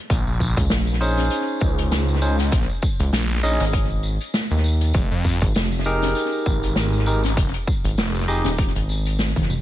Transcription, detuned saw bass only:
0.10 0.24 A#1 medium
0.27 0.55 A#1 loud
1.61 2.50 C#2 loud
2.52 2.67 A#1 loud
3.13 3.41 A#1 loud
3.43 3.57 A#1 loud
4.94 5.09 F1 loud
5.11 5.39 F2 loud
6.46 7.35 G#1 loud
7.37 7.51 F1 loud
7.98 8.26 F1 loud
8.28 8.42 F1 loud

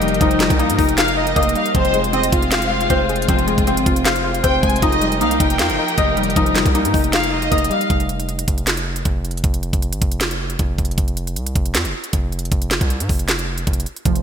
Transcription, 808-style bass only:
0.00 0.19 F1 loud
0.21 0.49 F1 loud
0.50 0.71 C2 loud
0.69 0.78 G#2 loud
0.79 1.34 F1 loud
1.36 1.55 F1 loud
1.75 2.30 F1 loud
2.32 2.88 F1 loud
2.90 3.27 F1 loud
3.29 3.57 F1 loud
3.58 3.79 F1 loud
3.77 3.86 G#1 loud
3.86 4.42 F1 loud
4.44 4.62 F1 loud
4.63 4.82 F1 loud
4.82 5.22 F1 loud
5.21 5.39 C2 loud
5.40 5.61 F1 loud
5.59 5.71 F2 loud
5.69 5.78 F1 loud
5.98 6.35 F1 loud
6.36 6.64 F1 loud
6.66 6.86 C2 loud
6.85 6.93 G#2 loud
6.94 7.49 F1 loud
7.52 7.70 F1 loud
7.90 8.45 F1 loud
8.48 9.03 F1 loud
9.05 9.42 F1 loud
9.44 9.72 F1 loud
9.73 9.94 F1 loud
9.92 10.01 G#1 loud
10.02 10.57 F1 loud
10.59 10.78 F1 loud
10.78 10.97 F1 loud
10.98 11.38 F1 loud
11.36 11.54 C2 loud
11.56 11.76 F1 loud
11.75 11.86 F2 loud
11.85 11.93 F1 medium
12.13 12.50 F1 loud
12.52 12.80 F1 loud
12.81 13.02 C2 loud
13.00 13.09 G#2 loud
13.09 13.65 F1 loud
13.67 13.85 F1 loud
14.05 14.22 F1 loud

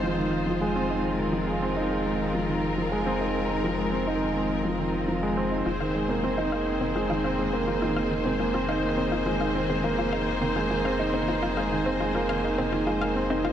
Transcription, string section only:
0.00 5.62 D#3 medium
0.00 5.62 G#3 medium
0.00 13.52 C4 medium
0.00 5.62 F4 medium
0.00 1.00 C5 medium
1.04 5.62 A#4 medium
5.66 13.52 D#3 medium
5.66 13.52 A#3 medium
5.66 13.52 G#4 medium
5.66 13.52 C5 medium

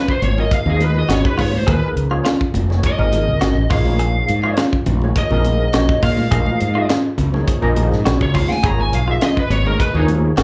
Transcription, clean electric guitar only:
0.00 0.17 F4 medium
1.09 1.33 F#4 medium
1.38 1.62 F4 medium
1.67 1.91 G#4 medium
2.11 2.23 F4 medium
2.25 2.49 F4 medium
3.41 3.66 F#4 medium
3.70 3.95 F4 medium
3.99 4.24 G#4 medium
4.44 4.55 F4 medium
4.58 4.82 F4 medium
5.74 5.98 F#4 medium
6.03 6.27 F4 medium
6.31 6.56 G#4 medium
6.75 6.87 F4 medium
6.89 7.14 F4 medium
8.05 8.30 F#4 medium
8.35 8.59 F4 medium
8.63 8.88 G#4 medium
9.08 9.19 F4 medium
9.22 9.46 F4 medium
10.37 10.43 F#4 medium

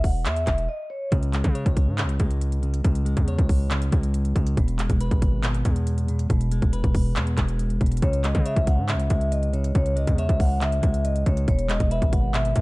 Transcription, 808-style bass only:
0.00 0.27 E1 loud
0.26 0.46 E2 loud
0.47 0.68 E1 loud
1.12 1.43 C#2 loud
1.44 1.65 C#3 loud
1.66 1.89 C#2 loud
1.87 2.05 G#2 loud
2.04 2.19 C#2 medium
2.20 2.82 C#2 loud
2.85 3.16 C#2 loud
3.17 3.38 E2 loud
3.39 3.90 C#2 loud
3.92 4.34 C#2 loud
4.36 4.56 C#2 loud
4.57 4.88 E1 loud
4.90 5.10 E1 loud
5.11 5.63 G#1 loud
5.65 6.27 E2 loud
6.30 6.61 E1 loud
6.62 6.83 E1 loud
6.84 7.18 E1 loud
7.16 7.37 E2 loud
7.38 7.79 E1 loud
7.81 8.02 E1 loud
8.02 8.34 C#2 loud
8.35 8.56 C#3 loud
8.56 8.79 C#2 loud
8.78 8.96 G#2 loud
8.94 9.10 C#2 loud
9.10 9.73 C#2 loud
9.75 10.06 C#2 loud
10.07 10.28 E2 loud
10.29 10.81 C#2 loud
10.83 11.25 C#2 loud
11.26 11.47 C#2 loud
11.48 11.79 E1 loud
11.80 12.01 E1 loud
12.02 12.54 G#1 loud
12.56 12.61 E2 loud

